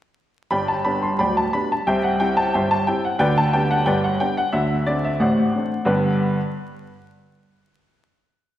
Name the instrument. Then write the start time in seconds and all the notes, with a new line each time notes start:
upright piano
0.51 G1 G2 D5 G5 B5
0.68 A5
0.85 G3 B3 D4 B5
1.02 C6
1.19 D1 D2 D5 G5 B5
1.37 A5
1.53 G3 B3 D4 B5
1.72 A5
1.87 C2 C3 C5 E5 G5
2.03 F#5
2.20 G3 C4 E4 G5
2.37 A5
2.54 G1 G2 C5 E5 G5
2.71 A5
2.87 G3 C4 E4 G5
3.05 F#5
3.19 D2 D3 B4 D5 G5
3.38 A5
3.53 G3 B3 D4 G5
3.71 F#5
3.86 G1 G2 B4 D5 G5
4.04 F#5
4.20 G3 B3 D4 G5
4.37 F#5
4.53 D2 D3 E5
4.86 A3 C4 D4 D5
5.05 E5
5.20 A1 A2 C5 D5 F#5
5.56 A3 C4 D4
5.85 G2 D3 B3 D4 G4 B4 B5